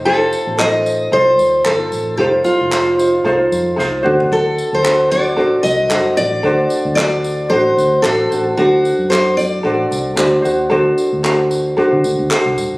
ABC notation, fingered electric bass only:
X:1
M:4/4
L:1/16
Q:"Swing 16ths" 1/4=113
K:Dphr
V:1 name="Fingered electric bass" clef=bass
F,,,3 A,,,4- A,,, C,,2 E,,2 G,,,2 A,,,2 | F,,,2 z F,,,4- F,,, C,,2 F,,2 C,,2 D,,2- | D,,3 D,,4- D,, A,,,2 C,,2 ^F,,,2 A,,,2 | D,,2 z D,,4- D,, A,,,2 D,,2 A,,,2 A,,,2 |
D,,3 ^F,,4- F,, A,,,2 C,,2 D,,2 E,,2 | D,,2 z D,,4- D,, z D, D,, D,, z C,, E,,, ^F,,, |]